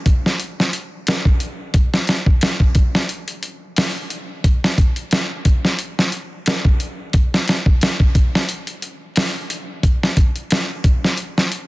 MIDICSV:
0, 0, Header, 1, 2, 480
1, 0, Start_track
1, 0, Tempo, 674157
1, 1243, Time_signature, 4, 2, 24, 8
1, 8310, End_track
2, 0, Start_track
2, 0, Title_t, "Drums"
2, 41, Note_on_c, 9, 42, 68
2, 42, Note_on_c, 9, 36, 95
2, 112, Note_off_c, 9, 42, 0
2, 113, Note_off_c, 9, 36, 0
2, 186, Note_on_c, 9, 38, 39
2, 257, Note_off_c, 9, 38, 0
2, 282, Note_on_c, 9, 42, 83
2, 353, Note_off_c, 9, 42, 0
2, 427, Note_on_c, 9, 38, 40
2, 498, Note_off_c, 9, 38, 0
2, 521, Note_on_c, 9, 42, 67
2, 593, Note_off_c, 9, 42, 0
2, 761, Note_on_c, 9, 42, 81
2, 771, Note_on_c, 9, 38, 115
2, 832, Note_off_c, 9, 42, 0
2, 843, Note_off_c, 9, 38, 0
2, 892, Note_on_c, 9, 36, 89
2, 963, Note_off_c, 9, 36, 0
2, 998, Note_on_c, 9, 42, 70
2, 1069, Note_off_c, 9, 42, 0
2, 1237, Note_on_c, 9, 42, 87
2, 1240, Note_on_c, 9, 36, 117
2, 1309, Note_off_c, 9, 42, 0
2, 1311, Note_off_c, 9, 36, 0
2, 1379, Note_on_c, 9, 38, 53
2, 1450, Note_off_c, 9, 38, 0
2, 1477, Note_on_c, 9, 42, 64
2, 1487, Note_on_c, 9, 38, 54
2, 1548, Note_off_c, 9, 42, 0
2, 1559, Note_off_c, 9, 38, 0
2, 1612, Note_on_c, 9, 36, 95
2, 1683, Note_off_c, 9, 36, 0
2, 1718, Note_on_c, 9, 42, 82
2, 1729, Note_on_c, 9, 38, 108
2, 1789, Note_off_c, 9, 42, 0
2, 1800, Note_off_c, 9, 38, 0
2, 1851, Note_on_c, 9, 36, 90
2, 1922, Note_off_c, 9, 36, 0
2, 1956, Note_on_c, 9, 42, 64
2, 1959, Note_on_c, 9, 36, 91
2, 2027, Note_off_c, 9, 42, 0
2, 2031, Note_off_c, 9, 36, 0
2, 2100, Note_on_c, 9, 38, 54
2, 2171, Note_off_c, 9, 38, 0
2, 2201, Note_on_c, 9, 42, 84
2, 2272, Note_off_c, 9, 42, 0
2, 2333, Note_on_c, 9, 42, 47
2, 2404, Note_off_c, 9, 42, 0
2, 2440, Note_on_c, 9, 42, 65
2, 2511, Note_off_c, 9, 42, 0
2, 2681, Note_on_c, 9, 46, 83
2, 2691, Note_on_c, 9, 38, 106
2, 2752, Note_off_c, 9, 46, 0
2, 2763, Note_off_c, 9, 38, 0
2, 2922, Note_on_c, 9, 42, 69
2, 2993, Note_off_c, 9, 42, 0
2, 3163, Note_on_c, 9, 36, 108
2, 3163, Note_on_c, 9, 42, 92
2, 3234, Note_off_c, 9, 36, 0
2, 3234, Note_off_c, 9, 42, 0
2, 3305, Note_on_c, 9, 38, 55
2, 3376, Note_off_c, 9, 38, 0
2, 3402, Note_on_c, 9, 36, 94
2, 3404, Note_on_c, 9, 42, 66
2, 3474, Note_off_c, 9, 36, 0
2, 3475, Note_off_c, 9, 42, 0
2, 3533, Note_on_c, 9, 42, 44
2, 3604, Note_off_c, 9, 42, 0
2, 3639, Note_on_c, 9, 42, 78
2, 3650, Note_on_c, 9, 38, 105
2, 3710, Note_off_c, 9, 42, 0
2, 3721, Note_off_c, 9, 38, 0
2, 3881, Note_on_c, 9, 42, 68
2, 3883, Note_on_c, 9, 36, 93
2, 3952, Note_off_c, 9, 42, 0
2, 3954, Note_off_c, 9, 36, 0
2, 4020, Note_on_c, 9, 38, 38
2, 4092, Note_off_c, 9, 38, 0
2, 4120, Note_on_c, 9, 42, 83
2, 4191, Note_off_c, 9, 42, 0
2, 4264, Note_on_c, 9, 38, 42
2, 4335, Note_off_c, 9, 38, 0
2, 4359, Note_on_c, 9, 42, 64
2, 4430, Note_off_c, 9, 42, 0
2, 4600, Note_on_c, 9, 42, 84
2, 4610, Note_on_c, 9, 38, 110
2, 4671, Note_off_c, 9, 42, 0
2, 4681, Note_off_c, 9, 38, 0
2, 4734, Note_on_c, 9, 36, 93
2, 4805, Note_off_c, 9, 36, 0
2, 4841, Note_on_c, 9, 42, 68
2, 4913, Note_off_c, 9, 42, 0
2, 5078, Note_on_c, 9, 42, 86
2, 5083, Note_on_c, 9, 36, 119
2, 5150, Note_off_c, 9, 42, 0
2, 5154, Note_off_c, 9, 36, 0
2, 5227, Note_on_c, 9, 38, 54
2, 5298, Note_off_c, 9, 38, 0
2, 5323, Note_on_c, 9, 42, 68
2, 5334, Note_on_c, 9, 38, 53
2, 5394, Note_off_c, 9, 42, 0
2, 5405, Note_off_c, 9, 38, 0
2, 5455, Note_on_c, 9, 36, 100
2, 5526, Note_off_c, 9, 36, 0
2, 5564, Note_on_c, 9, 42, 80
2, 5574, Note_on_c, 9, 38, 102
2, 5635, Note_off_c, 9, 42, 0
2, 5645, Note_off_c, 9, 38, 0
2, 5695, Note_on_c, 9, 36, 91
2, 5766, Note_off_c, 9, 36, 0
2, 5803, Note_on_c, 9, 36, 97
2, 5803, Note_on_c, 9, 42, 66
2, 5874, Note_off_c, 9, 36, 0
2, 5874, Note_off_c, 9, 42, 0
2, 5947, Note_on_c, 9, 38, 54
2, 6018, Note_off_c, 9, 38, 0
2, 6042, Note_on_c, 9, 42, 89
2, 6114, Note_off_c, 9, 42, 0
2, 6174, Note_on_c, 9, 42, 44
2, 6245, Note_off_c, 9, 42, 0
2, 6282, Note_on_c, 9, 42, 67
2, 6353, Note_off_c, 9, 42, 0
2, 6520, Note_on_c, 9, 46, 77
2, 6531, Note_on_c, 9, 38, 116
2, 6591, Note_off_c, 9, 46, 0
2, 6602, Note_off_c, 9, 38, 0
2, 6765, Note_on_c, 9, 42, 72
2, 6836, Note_off_c, 9, 42, 0
2, 7001, Note_on_c, 9, 36, 120
2, 7002, Note_on_c, 9, 42, 94
2, 7072, Note_off_c, 9, 36, 0
2, 7073, Note_off_c, 9, 42, 0
2, 7144, Note_on_c, 9, 38, 51
2, 7215, Note_off_c, 9, 38, 0
2, 7240, Note_on_c, 9, 36, 93
2, 7240, Note_on_c, 9, 42, 65
2, 7311, Note_off_c, 9, 36, 0
2, 7311, Note_off_c, 9, 42, 0
2, 7373, Note_on_c, 9, 42, 45
2, 7444, Note_off_c, 9, 42, 0
2, 7480, Note_on_c, 9, 42, 82
2, 7491, Note_on_c, 9, 38, 109
2, 7551, Note_off_c, 9, 42, 0
2, 7562, Note_off_c, 9, 38, 0
2, 7719, Note_on_c, 9, 42, 66
2, 7720, Note_on_c, 9, 36, 90
2, 7790, Note_off_c, 9, 42, 0
2, 7791, Note_off_c, 9, 36, 0
2, 7864, Note_on_c, 9, 38, 41
2, 7935, Note_off_c, 9, 38, 0
2, 7957, Note_on_c, 9, 42, 84
2, 8028, Note_off_c, 9, 42, 0
2, 8101, Note_on_c, 9, 38, 42
2, 8172, Note_off_c, 9, 38, 0
2, 8200, Note_on_c, 9, 42, 70
2, 8271, Note_off_c, 9, 42, 0
2, 8310, End_track
0, 0, End_of_file